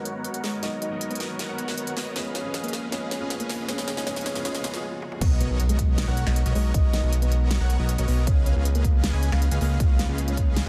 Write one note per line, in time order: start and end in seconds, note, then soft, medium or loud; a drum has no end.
0.00 2.13 D#3 medium
0.00 0.62 F#3 medium
0.00 0.62 A#3 medium
0.00 0.41 B3 loud
0.00 0.63 B3 medium
0.00 0.63 D#4 medium
0.00 0.41 F#4 medium
0.00 2.13 F#4 medium
0.00 0.42 A#4 medium
0.00 0.64 A#4 medium
0.00 2.13 A#4 medium
0.00 0.41 C#5 medium
0.00 0.41 F#5 loud
0.00 riser medium
0.05 closed hi-hat medium
0.25 closed hi-hat medium
0.34 closed hi-hat medium
0.44 0.57 G#3 medium
0.44 0.61 B3 medium
0.44 0.61 F#4 medium
0.44 0.58 G#4 medium
0.44 0.61 A#4 medium
0.44 0.61 C#5 medium
0.44 0.61 D#5 loud
0.44 snare medium
0.44 open hi-hat medium
0.62 0.88 F#3 medium
0.62 0.89 A#3 medium
0.62 0.89 B3 medium
0.62 0.77 D#4 medium
0.62 0.90 D#4 medium
0.62 0.89 F#4 medium
0.62 0.89 A#4 medium
0.62 0.90 A#4 medium
0.62 0.89 C#5 medium
0.62 0.77 D#5 loud
0.62 0.89 D#5 medium
0.62 snare medium
0.62 closed hi-hat medium
0.82 1.03 D#4 medium
0.82 1.03 D#5 loud
0.82 closed hi-hat medium
0.89 2.12 F#3 medium
0.89 2.13 B3 medium
0.89 1.47 B3 medium
0.89 2.14 D#4 medium
0.89 1.47 F#4 medium
0.89 1.47 A#4 medium
0.89 1.47 C#5 medium
0.89 1.47 D#5 medium
0.93 2.14 A#4 medium
1.01 closed hi-hat medium
1.11 1.38 B3 medium
1.11 1.38 B4 loud
1.11 closed hi-hat soft
1.15 closed hi-hat medium
1.20 snare medium
1.20 closed hi-hat medium
1.39 snare medium
1.39 closed hi-hat medium
1.49 1.94 B3 loud
1.49 1.94 F#4 medium
1.49 1.94 A#4 medium
1.49 1.94 C#5 medium
1.49 1.94 F#5 loud
1.58 closed hi-hat medium
1.68 snare medium
1.78 closed hi-hat medium
1.87 closed hi-hat medium
1.97 2.10 B3 medium
1.97 2.13 B3 loud
1.97 2.13 F#4 medium
1.97 2.13 A#4 medium
1.97 2.10 B4 medium
1.97 2.13 C#5 medium
1.97 2.13 D#5 loud
1.97 snare medium
1.97 open hi-hat medium
2.15 4.81 C#3 medium
2.15 2.41 F3 medium
2.15 2.42 G#3 medium
2.15 4.81 G#3 medium
2.15 2.42 B3 medium
2.15 2.42 C#4 medium
2.15 2.30 C#4 medium
2.15 2.43 C#4 medium
2.15 4.81 F4 medium
2.15 4.81 G#4 medium
2.15 2.42 G#4 medium
2.15 2.43 G#4 medium
2.15 2.42 B4 medium
2.15 2.30 C#5 medium
2.15 2.42 D#5 medium
2.15 2.42 F5 medium
2.15 snare medium
2.15 closed hi-hat medium
2.35 2.55 C#4 medium
2.35 2.55 C#5 medium
2.35 snare medium
2.35 closed hi-hat medium
2.42 2.90 F3 medium
2.42 2.90 G#3 medium
2.42 2.91 B3 medium
2.42 2.91 C#4 medium
2.42 2.91 G#4 medium
2.42 2.91 B4 medium
2.42 2.91 D#5 medium
2.42 2.91 F5 medium
2.46 2.92 G#4 medium
2.54 snare medium
2.54 closed hi-hat medium
2.63 2.91 A#3 medium
2.63 2.91 A#4 medium
2.63 closed hi-hat soft
2.68 closed hi-hat medium
2.73 snare medium
2.73 closed hi-hat medium
2.91 3.17 F3 medium
2.91 3.18 G#3 medium
2.91 3.19 B3 medium
2.91 3.06 C#4 medium
2.91 3.19 C#4 medium
2.91 3.19 G#4 medium
2.91 3.19 B4 medium
2.91 3.06 C#5 medium
2.91 3.19 D#5 medium
2.91 3.19 F5 medium
2.91 snare medium
2.91 closed hi-hat medium
3.11 3.32 C#4 medium
3.11 3.32 C#5 medium
3.11 snare medium
3.11 closed hi-hat medium
3.19 3.66 F3 medium
3.19 3.67 G#3 medium
3.19 3.67 B3 medium
3.19 3.67 C#4 medium
3.19 3.68 C#4 medium
3.19 3.67 G#4 medium
3.19 3.68 G#4 medium
3.19 3.67 B4 medium
3.19 3.67 D#5 medium
3.19 3.67 F5 medium
3.30 snare medium
3.30 closed hi-hat medium
3.40 3.67 A#3 medium
3.40 3.67 A#4 medium
3.40 closed hi-hat medium
3.49 snare medium
3.49 open hi-hat medium
3.68 3.94 F3 medium
3.68 3.95 G#3 medium
3.68 3.95 B3 medium
3.68 3.82 C#4 medium
3.68 3.95 C#4 medium
3.68 3.95 G#4 medium
3.68 3.96 G#4 medium
3.68 3.95 B4 medium
3.68 3.82 C#5 loud
3.68 3.95 D#5 medium
3.68 3.95 F5 medium
3.68 snare medium
3.68 closed hi-hat medium
3.78 snare medium
3.88 4.05 C#4 medium
3.88 4.05 C#5 medium
3.88 snare medium
3.88 closed hi-hat medium
3.95 4.04 F3 medium
3.95 4.05 G#3 medium
3.95 4.05 B3 medium
3.95 4.05 C#4 medium
3.95 4.06 C#4 medium
3.95 4.05 G#4 medium
3.95 4.05 B4 medium
3.95 4.05 D#5 medium
3.95 4.05 F5 medium
3.95 snare medium
3.99 4.06 G#4 medium
4.06 4.32 F3 medium
4.06 4.33 G#3 medium
4.06 4.33 B3 medium
4.06 4.21 C#4 medium
4.06 4.33 C#4 medium
4.06 4.34 C#4 medium
4.06 4.33 G#4 medium
4.06 4.34 G#4 medium
4.06 4.33 B4 medium
4.06 4.21 C#5 loud
4.06 4.33 D#5 medium
4.06 4.33 F5 medium
4.06 snare loud
4.06 closed hi-hat medium
4.16 snare medium
4.16 closed hi-hat soft
4.21 closed hi-hat medium
4.26 4.44 C#4 medium
4.26 4.44 C#5 loud
4.26 snare loud
4.26 closed hi-hat medium
4.34 4.43 F3 medium
4.34 4.43 G#3 medium
4.34 4.44 B3 medium
4.34 4.44 C#4 medium
4.34 4.44 G#4 medium
4.34 4.44 B4 medium
4.34 4.44 D#5 medium
4.34 4.44 F5 medium
4.34 snare medium
4.38 4.45 G#4 medium
4.44 4.62 F3 medium
4.44 4.62 G#3 medium
4.44 4.63 B3 medium
4.44 4.59 C#4 medium
4.44 4.63 C#4 medium
4.44 4.63 G#4 medium
4.44 4.63 G#4 loud
4.44 4.63 B4 medium
4.44 4.59 C#5 loud
4.44 4.63 D#5 medium
4.44 4.63 F5 medium
4.44 snare loud
4.44 closed hi-hat medium
4.55 snare medium
4.63 4.81 F3 medium
4.63 4.82 G#3 medium
4.63 4.82 B3 medium
4.63 4.78 C#4 medium
4.63 4.82 C#4 medium
4.63 4.82 G#4 medium
4.63 4.82 G#4 loud
4.63 4.82 B4 medium
4.63 4.78 C#5 medium
4.63 4.82 D#5 medium
4.63 4.82 F5 medium
4.63 snare loud
4.63 closed hi-hat medium
4.74 snare medium
5.02 high tom medium
5.12 mid tom medium
5.21 5.48 B1 loud
5.21 8.24 D#3 medium
5.21 8.24 F#3 medium
5.21 10.69 B3 medium
5.21 5.48 B3 medium
5.21 5.35 B3 medium
5.21 8.24 F#4 medium
5.21 5.48 F#4 medium
5.21 8.24 A#4 medium
5.21 5.48 A#4 medium
5.21 5.35 B4 loud
5.21 5.48 C#5 medium
5.21 5.48 D#5 medium
5.21 kick loud
5.21 closed hi-hat medium
5.21 crash loud
5.21 impact medium
5.40 5.61 B3 medium
5.40 5.61 B4 medium
5.40 closed hi-hat medium
5.50 6.06 B1 loud
5.50 6.05 B3 medium
5.50 6.05 F#4 medium
5.50 6.05 A#4 medium
5.50 6.05 C#5 medium
5.50 6.05 D#5 medium
5.60 closed hi-hat medium
5.69 5.97 G#3 medium
5.69 5.97 G#4 medium
5.69 closed hi-hat medium
5.79 kick medium
5.79 closed hi-hat medium
5.98 snare loud
5.98 closed hi-hat medium
6.07 6.25 B1 loud
6.07 6.25 B3 loud
6.07 6.25 F#4 medium
6.07 6.25 A#4 medium
6.07 6.25 C#5 medium
6.07 6.25 F#5 loud
6.17 closed hi-hat medium
6.27 6.44 B1 loud
6.27 6.40 B3 medium
6.27 6.40 F#4 medium
6.27 6.40 A#4 medium
6.27 6.40 C#5 medium
6.27 6.40 D#5 loud
6.27 snare medium
6.36 closed hi-hat medium
6.46 6.53 B1 loud
6.46 6.53 B3 loud
6.46 6.53 F#4 medium
6.46 6.53 A#4 medium
6.46 6.53 C#5 medium
6.46 6.53 D#5 loud
6.46 closed hi-hat medium
6.55 6.72 B1 loud
6.55 6.69 G#3 medium
6.55 6.72 B3 medium
6.55 6.72 F#4 medium
6.55 6.69 G#4 medium
6.55 6.72 A#4 medium
6.55 6.72 C#5 medium
6.55 6.72 D#5 loud
6.55 open hi-hat medium
6.74 7.01 B1 loud
6.74 7.01 B3 medium
6.74 6.88 D#4 medium
6.74 7.01 F#4 medium
6.74 7.01 A#4 medium
6.74 7.01 C#5 medium
6.74 6.88 D#5 loud
6.74 7.01 D#5 medium
6.74 kick loud
6.74 closed hi-hat medium
6.93 7.14 D#4 medium
6.93 7.14 D#5 medium
6.93 snare medium
6.93 closed hi-hat medium
7.03 7.58 B1 loud
7.03 7.58 B3 medium
7.03 7.58 F#4 medium
7.03 7.58 A#4 medium
7.03 7.58 C#5 medium
7.03 7.58 D#5 medium
7.13 closed hi-hat medium
7.22 7.50 B3 medium
7.22 7.50 B4 medium
7.22 closed hi-hat medium
7.32 closed hi-hat medium
7.51 snare loud
7.51 closed hi-hat medium
7.60 7.78 B1 loud
7.60 7.78 B3 loud
7.60 7.78 F#4 medium
7.60 7.78 A#4 medium
7.60 7.78 C#5 medium
7.60 7.78 F#5 loud
7.70 closed hi-hat medium
7.79 7.97 B1 loud
7.79 7.93 B3 medium
7.79 7.93 F#4 medium
7.79 7.93 A#4 medium
7.79 7.93 C#5 medium
7.79 7.93 D#5 loud
7.89 closed hi-hat medium
7.98 8.06 B1 medium
7.98 8.06 B3 loud
7.98 8.06 F#4 medium
7.98 8.06 A#4 medium
7.98 8.06 C#5 medium
7.98 8.06 D#5 loud
7.98 closed hi-hat medium
8.08 8.29 B1 loud
8.08 8.22 B3 medium
8.08 8.25 B3 medium
8.08 8.25 F#4 medium
8.08 8.25 A#4 medium
8.08 8.22 B4 medium
8.08 8.25 C#5 medium
8.08 8.25 D#5 loud
8.08 open hi-hat medium
8.27 8.54 C#2 loud
8.27 10.69 C#3 medium
8.27 10.69 F3 medium
8.27 10.69 G#3 medium
8.27 8.54 C#4 medium
8.27 8.41 C#4 medium
8.27 10.69 F4 medium
8.27 8.54 G#4 medium
8.27 8.54 B4 medium
8.27 8.41 C#5 loud
8.27 8.54 D#5 medium
8.27 8.54 F5 medium
8.27 kick loud
8.27 closed hi-hat medium
8.46 8.67 C#4 medium
8.46 8.67 C#5 medium
8.46 closed hi-hat medium
8.56 9.11 C#2 loud
8.56 9.11 C#4 medium
8.56 9.11 G#4 medium
8.56 9.11 B4 medium
8.56 9.11 D#5 medium
8.56 9.11 F5 medium
8.65 closed hi-hat medium
8.75 9.03 A#3 medium
8.75 9.03 A#4 loud
8.75 closed hi-hat medium
8.84 kick medium
8.84 closed hi-hat medium
9.04 snare loud
9.04 closed hi-hat medium
9.13 9.30 C#2 medium
9.13 9.30 C#4 medium
9.13 9.30 G#4 medium
9.13 9.30 B4 medium
9.13 9.30 D#5 medium
9.13 9.30 G#5 loud
9.23 closed hi-hat medium
9.32 9.50 C#2 medium
9.32 9.46 C#4 loud
9.32 9.46 G#4 medium
9.32 9.46 B4 medium
9.32 9.46 D#5 medium
9.32 9.46 F5 loud
9.32 snare medium
9.42 closed hi-hat medium
9.51 9.59 C#2 medium
9.51 9.59 C#4 medium
9.51 9.59 G#4 medium
9.51 9.59 B4 medium
9.51 9.59 D#5 medium
9.51 9.59 F5 loud
9.51 closed hi-hat medium
9.61 9.78 C#2 loud
9.61 9.75 A#3 medium
9.61 9.78 C#4 medium
9.61 9.78 G#4 medium
9.61 9.75 A#4 medium
9.61 9.78 B4 medium
9.61 9.78 D#5 medium
9.61 9.78 F5 loud
9.61 open hi-hat medium
9.80 10.07 C#2 loud
9.80 10.07 C#4 medium
9.80 9.94 F4 medium
9.80 10.07 G#4 medium
9.80 10.07 B4 medium
9.80 10.07 D#5 medium
9.80 10.06 F5 medium
9.80 10.07 F5 medium
9.80 9.94 F5 loud
9.80 kick loud
9.80 closed hi-hat medium
9.99 10.20 F4 medium
9.99 10.20 F5 loud
9.99 snare medium
9.99 closed hi-hat medium
10.09 10.64 C#2 loud
10.09 10.64 C#4 medium
10.09 10.64 G#4 medium
10.09 10.64 B4 medium
10.09 10.64 D#5 medium
10.09 10.64 F5 medium
10.18 closed hi-hat medium
10.28 10.55 C#4 medium
10.28 10.55 C#5 loud
10.28 closed hi-hat medium
10.37 kick medium
10.37 closed hi-hat medium
10.57 snare loud
10.57 closed hi-hat medium